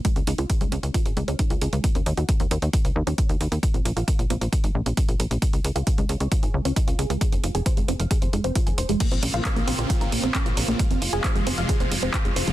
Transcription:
<<
  \new Staff \with { instrumentName = "Synth arpeggio sound" } { \time 4/4 \key bes \minor \tempo 4 = 134 aes16 des'16 ees'16 f'16 aes'16 aes16 des'16 ees'16 f'16 aes'16 aes16 des'16 ees'16 f'16 aes'16 aes16 | bes16 des'16 ees'16 ges'16 bes'16 bes16 des'16 des''16 ges'16 bes'16 bes16 des'16 ees'16 ges'16 bes'16 bes16 | bes16 c'16 des'16 f'16 bes'16 bes16 c'16 c''16 f'16 bes'16 bes16 c'16 des'16 f'16 bes'16 bes16 | aes16 des'16 ees'16 f'16 aes'16 aes16 des'16 des''16 f'16 aes'16 aes16 des'16 ees'16 f'16 aes'16 aes16 |
aes16 c'16 f'16 aes'16 c''16 aes16 c'16 f''16 aes'16 c''16 aes16 c'16 f'16 aes'16 c''16 aes16 | bes16 c'16 des'16 f'16 bes'16 bes16 c'16 c''16 f'16 bes'16 bes16 c'16 des'16 f'16 bes'16 bes16 | aes16 c'16 f'16 aes'16 c''16 aes16 c'16 f''16 aes'16 c''16 aes16 c'16 f'16 aes'16 c''16 aes16 | }
  \new Staff \with { instrumentName = "Supersaw synth" } { \clef bass \time 4/4 \key bes \minor << { r1 | r1 | r1 | r1 |
r1 | f'1~ | f'1 | } \\ { r1 | r1 | r1 | r1 |
r1 | <des bes c'>1 | <c f aes>1 | } >> }
  \new Staff \with { instrumentName = "Analog synth bass" } { \clef bass \time 4/4 \key bes \minor r16 des,16 des,16 des,16 r16 des,16 des,16 des,16 r16 aes,,16 des,16 des,16 r16 des,16 des,16 des,16 | r16 ees,16 ees,16 ees,16 r16 ees,16 ees,16 ees,16 r16 des,16 ees,16 ees,16 r16 ees,16 ees,16 ees,16 | r16 bes,,16 bes,,16 bes,,16 r16 bes,,16 bes,,16 bes,,16 r16 aes,,16 bes,,16 bes,,16 r16 bes,,16 bes,,16 bes,,16 | r16 des,16 des,16 des,16 r16 des,16 des,16 des,16 r16 aes,,16 des,16 des,16 r16 des,16 des,16 des,16 |
r16 f,,16 f,,16 f,,16 r16 f,,16 f,,16 f,,16 r16 f,,16 f,,16 f,,16 r16 f,,16 ees,,16 f,,16 | r16 bes,,16 bes,,16 bes,,16 r16 bes,,16 bes,,16 bes,,16 r16 aes,,16 bes,,16 bes,,16 r16 bes,,16 bes,,16 bes,,16 | r16 f,,16 f,,16 f,,16 r16 f,,16 f,,16 f,,16 r16 ees,,16 f,,16 f,,16 r16 f,,16 f,,16 f,,16 | }
  \new DrumStaff \with { instrumentName = "Drums" } \drummode { \time 4/4 <hh bd>16 hh16 hh16 hh16 <hh bd>16 hh16 hh16 hh16 <hh bd>16 hh16 hh16 hh16 <hh bd>16 hh16 hh16 hh16 | <hh bd>16 hh16 hh16 hh16 <hh bd>16 hh16 hh16 hh16 <hh bd>16 hh8 hh16 <hh bd>16 hh16 hh16 hh16 | <hh bd>16 hh16 hh16 hh16 <hh bd>16 hh16 hh16 hh16 <hh bd>16 hh8 hh16 <hh bd>16 hh16 hh16 hh16 | <hh bd>16 hh16 hh16 hh16 <hh bd>16 hh16 hh16 hh16 <hh bd>16 hh8 hh16 <hh bd>16 hh16 hh16 hh16 |
<hh bd>16 hh16 hh16 hh16 <hh bd>16 hh16 hh16 hh16 <hh bd>16 hh16 hh16 hh16 <hh bd>16 hh16 hh16 hh16 | <cymc hh bd>16 hh16 hho16 hh16 <hc hh bd>16 hh16 hho16 hh16 <hh bd>16 hh16 hho16 hh16 <hc hh bd>16 hh16 hho16 hh16 | <hh bd>16 hh16 hho16 hh16 <hc hh bd>16 hh16 hho16 hh16 <hh bd>16 hh16 hho16 hh16 <hc hh bd>16 hh16 hho16 hh16 | }
>>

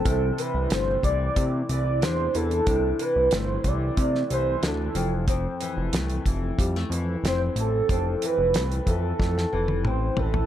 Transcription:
<<
  \new Staff \with { instrumentName = "Soft synth lead" } { \time 4/4 \key c \major \tempo 4 = 92 a'8 b'8 c''8 d''4 d''8 c''8 a'8~ | a'8 b'8 c''8 d''4 c''8 a'8. r16 | r2. c''8 a'8~ | a'8 b'4 a'4. c''8 a'8 | }
  \new Staff \with { instrumentName = "Nylon-string guitar" } { \clef bass \time 4/4 \key c \major <c d'>8 e8 a8 e8 a8 e8 d'8 e8 | <c d'>8 e8 a8 e8 a8 e8 d'8 f,8 | <f, c'>8 e8 a8 e8 g16 a16 e8 c'8 e8 | <f, c'>8 e8 a8 e8 a8 e8 c'8 e8 | }
  \new Staff \with { instrumentName = "Analog synth bass" } { \clef bass \time 4/4 \key c \major c,8 r16 c,16 g,,8 c,8 c8 c,8 e,8 e,8 | c,8 r16 c,16 g,,8 c,8 c8 c,8 d,8 f,,8~ | f,,8 r16 f,,16 c,8 f,,8 f,8 f,8 f,,8 a,,8 | f,,8 r16 f,,16 c,8 f,8 f,8 f,,8 a,,8 a,,8 | }
  \new DrumStaff \with { instrumentName = "Drums" } \drummode { \time 4/4 <hh bd>8 hh8 <hh sn>8 <hh bd>8 <hh bd>8 hh8 <hh sn>8 hh16 hh16 | <hh bd>8 hh8 <hh sn>8 <hh bd>8 <hh bd>16 sn16 hh8 <hh sn>8 hh8 | <hh bd>8 hh8 <hh sn>16 hh16 <hh bd>8 <hh bd>16 sn16 hh8 <hh sn>8 hh8 | <hh bd>8 hh8 <hh sn>16 hh16 <hh bd>8 <bd sn>16 sn8 tommh16 toml8 tomfh16 tomfh16 | }
>>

